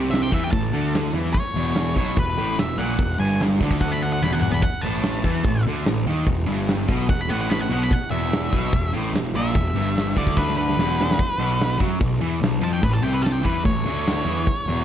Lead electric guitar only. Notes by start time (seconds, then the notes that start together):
0.11 E5
0.22 G5
0.34 E5
0.44 G5
0.51 A5
1.33 C#5
1.97 C#5
2.19 B4
2.59 E5
2.78 F#5
3.20 G#5
3.82 F#5
3.92 B5
4.02 F#5
4.13 F#5
4.23 B5
4.33 F#5
4.42 F#5
4.51 B5
4.63 F#5
4.81 A5
7.10 F#5
7.21 B5
7.30 F#5
7.41 F#5
7.50 B5
7.61 F#5
7.73 F#5
7.83 B5
7.93 F#5
8.11 E5
9.36 E5
10.18 D5
10.37 B4
10.58 B4
12.64 A5
12.73 G5
12.84 B4
12.93 A5
13.03 G5
13.14 B4
13.22 A5
13.32 G5
13.46 B4
13.65 C#5